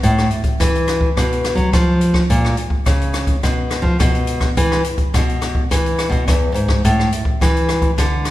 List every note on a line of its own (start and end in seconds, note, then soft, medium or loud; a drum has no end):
0.03 0.28 A2 loud
0.03 kick medium
0.03 closed hi-hat medium
0.18 cross-stick medium
0.18 closed hi-hat soft
0.31 closed hi-hat soft
0.44 kick medium
0.44 closed hi-hat soft
0.60 1.08 E3 medium
0.60 kick medium
0.60 cross-stick medium
0.60 closed hi-hat medium
0.75 closed hi-hat soft
0.88 cross-stick medium
0.88 closed hi-hat medium
1.01 kick medium
1.17 1.53 B2 medium
1.17 kick medium
1.17 cross-stick medium
1.17 closed hi-hat medium
1.32 closed hi-hat soft
1.44 cross-stick medium
1.44 closed hi-hat soft
1.55 1.69 F#3 medium
1.55 kick medium
1.55 closed hi-hat soft
1.73 2.22 F3 medium
1.73 kick medium
1.73 cross-stick medium
1.73 closed hi-hat medium
2.01 closed hi-hat soft
2.14 kick medium
2.14 cross-stick medium
2.30 2.54 A#2 medium
2.30 kick medium
2.30 closed hi-hat medium
2.45 cross-stick medium
2.57 closed hi-hat soft
2.70 kick medium
2.86 3.35 C#3 medium
2.86 kick medium
2.86 cross-stick medium
2.86 closed hi-hat medium
3.01 closed hi-hat soft
3.14 cross-stick medium
3.14 closed hi-hat soft
3.27 kick medium
3.27 closed hi-hat soft
3.43 3.80 B2 medium
3.43 kick medium
3.43 cross-stick medium
3.43 closed hi-hat medium
3.71 cross-stick medium
3.71 closed hi-hat soft
3.82 3.96 F3 medium
3.82 kick medium
4.00 4.49 B2 loud
4.00 kick medium
4.00 cross-stick medium
4.00 closed hi-hat medium
4.15 closed hi-hat soft
4.27 closed hi-hat soft
4.41 kick medium
4.41 cross-stick medium
4.41 closed hi-hat soft
4.57 4.81 E3 loud
4.57 kick medium
4.57 closed hi-hat medium
4.72 cross-stick medium
4.72 closed hi-hat soft
4.84 closed hi-hat soft
4.98 kick medium
4.98 closed hi-hat soft
5.14 5.62 B2 medium
5.14 kick medium
5.14 cross-stick medium
5.14 closed hi-hat medium
5.29 closed hi-hat soft
5.42 cross-stick medium
5.42 closed hi-hat soft
5.55 kick medium
5.71 6.07 E3 medium
5.71 kick medium
5.71 cross-stick medium
5.71 closed hi-hat medium
5.86 closed hi-hat soft
5.99 cross-stick medium
5.99 closed hi-hat soft
6.09 6.23 B2 medium
6.09 kick medium
6.09 closed hi-hat soft
6.28 6.53 E2 medium
6.28 kick medium
6.28 cross-stick medium
6.28 closed hi-hat medium
6.54 6.81 G#2 medium
6.54 closed hi-hat soft
6.68 kick medium
6.68 cross-stick medium
6.85 7.09 A2 loud
6.85 kick medium
6.85 closed hi-hat medium
7.00 cross-stick medium
7.12 closed hi-hat soft
7.25 kick medium
7.41 7.90 E3 medium
7.41 kick medium
7.41 cross-stick medium
7.41 closed hi-hat medium
7.57 closed hi-hat soft
7.69 cross-stick medium
7.69 closed hi-hat medium
7.82 kick medium
7.82 closed hi-hat soft
7.98 8.30 D3 medium
7.98 kick medium
7.98 cross-stick medium
7.98 closed hi-hat medium
8.25 cross-stick medium
8.25 closed hi-hat medium